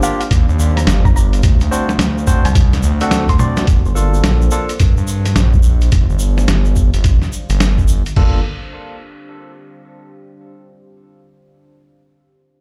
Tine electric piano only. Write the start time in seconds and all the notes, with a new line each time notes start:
0.03 A#3 D4 F4 G4
1.71 C4 D4 F#4 C5
2.27 C4 D4 F#4 C5
3.01 C4 D4 F#4 A4
3.40 C4 D4 F#4 D5
3.95 A#3 D4 F4 A4
4.52 A#3 D4 F4 A4
8.17 A#3 D4 F4 A4